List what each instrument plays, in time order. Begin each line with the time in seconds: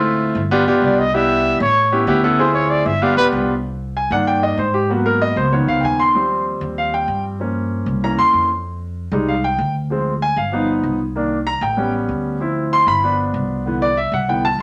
Already playing: upright bass D2, grand piano A3 C4 E4 F4
0.35 upright bass G1
0.51 grand piano B3 D4 F4 G4
0.67 upright bass B1, grand piano B3 D4 F4 G4
0.82 upright bass C2, trumpet D5
0.99 trumpet D#5
1.14 grand piano B3 D4 E4 G4, trumpet E5
1.60 upright bass A1, trumpet C#5
1.92 grand piano B3 C#4 E4 G4
2.07 upright bass D2, grand piano B3 C#4 E4 G4
2.24 grand piano B3 C#4 E4 A4
2.39 grand piano C4 E4 F4 G#4, trumpet C5
2.54 trumpet C#5
2.70 trumpet D5
2.86 upright bass G1, trumpet E5
3.02 grand piano B3 D4 F4 G4, trumpet F5
3.17 upright bass B1, grand piano B3 D4 F4 G4, trumpet B4
3.32 upright bass C2
3.97 grand piano G#5
4.11 upright bass G2, grand piano D#3 A#3 D4 F#5
4.27 grand piano G5
4.43 grand piano D#5
4.57 upright bass G#2, grand piano C5
4.74 grand piano G4
4.90 grand piano F#3 A#3 B3 F#4
5.06 grand piano A#4
5.22 grand piano D#5
5.36 upright bass C#2, grand piano C5
5.52 grand piano D#3 F3 B3 C#5
5.68 upright bass C#2, grand piano F5
5.80 upright bass D#2, grand piano G5
5.85 grand piano G#5
6.00 grand piano C6
6.15 grand piano F3 G3 C4
6.61 upright bass D#2
6.78 grand piano F5
6.94 grand piano G5
7.08 upright bass G2
7.40 grand piano F3 A#3 C#4
7.86 upright bass C2
8.03 grand piano E3 A#3 C#4 A#5
8.18 upright bass E2, grand piano C6
8.33 upright bass F2
9.12 upright bass C2, grand piano G3 G#3 D#4
9.29 grand piano F5
9.44 grand piano G5
9.58 upright bass D2
9.90 grand piano F3 G#3 C4
10.22 grand piano G#5
10.36 upright bass G1, grand piano F5
10.52 grand piano F3 B3 D#4
10.83 upright bass C2
11.15 grand piano D#3 A#3 D4
11.47 grand piano A#5
11.61 upright bass A1, grand piano G5
11.77 grand piano G3 B3 C#4
12.09 upright bass D2
12.40 grand piano F3 C4 E4
12.73 grand piano C6
12.87 upright bass G1, grand piano B5
13.03 grand piano F3 B3 D4
13.34 upright bass C2
13.66 grand piano D3 E3 B3
13.82 grand piano D5
13.97 grand piano E5
14.12 upright bass C2, grand piano F#5
14.28 grand piano D3 E3 B3 G5
14.45 grand piano A5
14.59 upright bass A#1